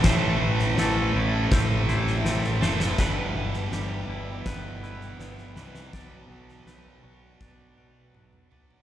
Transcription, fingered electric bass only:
\new Staff \with { instrumentName = "Fingered electric bass" } { \clef bass \time 4/4 \key a \dorian \tempo 4 = 82 a,,8 a,,8 a,,8 a,,8 a,,4 a,,8 fis,,8 | g,,8 g,,8 g,,8 g,,8 g,,4 g,,8 c,8 | b,,8 b,,8 b,,8 b,,8 b,,4 b,,8 b,,8 | }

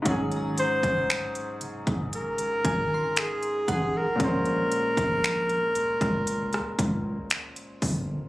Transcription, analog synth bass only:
\new Staff \with { instrumentName = "Analog synth bass" } { \clef bass \time 4/4 \key bes \minor \tempo 4 = 58 aes,,8. ges,,16 r8 ges,,16 ges,,16 r16 aes,,16 aes,,8 r8 a,,8 | bes,,8 r16 bes,,8. des,16 des,8. des,8 r8 g,,8 | }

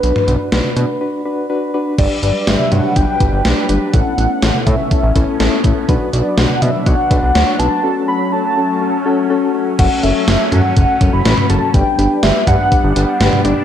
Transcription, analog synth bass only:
\new Staff \with { instrumentName = "Analog synth bass" } { \clef bass \time 4/4 \key b \minor \tempo 4 = 123 b,,16 r16 b,,16 r16 b,,16 r16 b,16 r2 r16 | g,,16 r16 g,,16 r16 g,,16 r16 g,16 r16 g,,16 r16 g,,16 g,,16 b,,16 r16 g,,16 r16 | a,,16 r16 a,,16 r16 a,,16 r16 a,16 r8 a,,16 a,,16 r16 a,,16 r16 a,,16 r16 | b,,16 r16 b,,16 r16 b,,16 r16 b,16 r16 b,,16 r16 b,,16 b,,16 d,16 r16 b,,16 r16 |
r1 | fis,,16 r16 fis,,16 r16 fis,,16 r16 fis,16 r16 fis,,16 r16 fis,,16 fis,,16 a,,16 r16 fis,,16 r16 | g,,16 r16 g,,16 r16 g,,16 r16 g,16 r8 g,,16 g,,16 r16 g,,16 r16 g,,16 r16 | }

